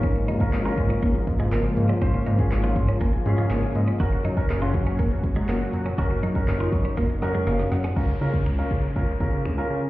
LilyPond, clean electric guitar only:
\new Staff \with { instrumentName = "Clean electric guitar" } { \time 4/4 \key des \major \tempo 4 = 121 des'16 r16 ees'16 r8 f'16 r16 des'16 bes16 r8 aes16 bes16 r8 des'16 | des'16 r16 ees'16 r8 f'16 r16 des'16 bes16 r8 aes16 bes16 r8 des'16 | ges'16 r16 ees'16 r8 f'16 r16 des'16 bes16 r8 aes16 bes16 r8 des'16 | ges'16 r16 ees'16 r8 f'16 r16 des'16 bes16 r8 aes16 bes16 r8 des'16 |
r1 | }